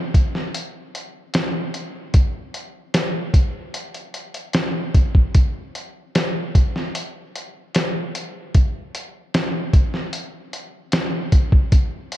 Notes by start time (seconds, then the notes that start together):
0.14 kick, closed hi-hat
0.35 snare
0.54 closed hi-hat
0.95 closed hi-hat
1.34 snare, closed hi-hat
1.74 closed hi-hat
2.14 kick, closed hi-hat
2.54 closed hi-hat
2.94 snare, closed hi-hat
3.34 kick, closed hi-hat
3.74 closed hi-hat
3.94 closed hi-hat
4.14 closed hi-hat
4.34 closed hi-hat
4.53 snare, closed hi-hat
4.94 kick, closed hi-hat
5.15 kick
5.35 kick, closed hi-hat
5.75 closed hi-hat
6.15 snare, closed hi-hat
6.55 kick, closed hi-hat
6.76 snare
6.95 closed hi-hat
7.36 closed hi-hat
7.75 snare, closed hi-hat
8.15 closed hi-hat
8.54 kick, closed hi-hat
8.95 closed hi-hat
9.34 snare, closed hi-hat
9.73 kick, closed hi-hat
9.94 snare
10.13 closed hi-hat
10.53 closed hi-hat
10.92 snare, closed hi-hat
11.32 kick, closed hi-hat
11.52 kick
11.72 kick, closed hi-hat
12.12 closed hi-hat